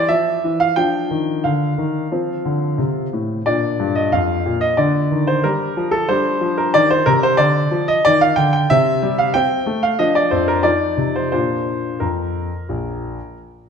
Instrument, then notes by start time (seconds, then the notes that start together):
grand piano
Already playing: C4
0.08 F3 E5
0.44 E3
0.60 F5
0.76 F3 D4 G5
1.11 D#3
1.44 D3 F5
1.78 D#3
2.12 F3 C4
2.45 D3
2.78 C3
3.13 A2
3.46 A#2 D4 D5
3.79 G2
3.95 D#5
4.12 F2 F5
4.46 A#2
4.61 D#5
4.77 D3 D4 D5
5.11 D#3
5.27 C5
5.44 G3 A#4
5.77 F3
5.91 A4
6.08 G3 D4 C5
6.41 F3
6.58 A#4
6.74 D#3 D5
6.90 C5
7.06 C3 A#4
7.23 C5
7.37 D3 D5
7.71 F3
7.88 D#5
8.05 D#3 D5
8.21 F5
8.36 D3 G5
8.53 G5
8.70 C3 C4 E5
9.02 G3
9.18 F5
9.34 C4 G5
9.66 A3
9.83 F5
9.99 F3 D4 D#5
10.15 D5
10.31 F2 C5
10.48 A#4
10.63 F3 D#4 D5
10.97 C3
11.16 C5
11.32 A#2 D4 F4 C5
12.00 F2 A#4
12.69 A#1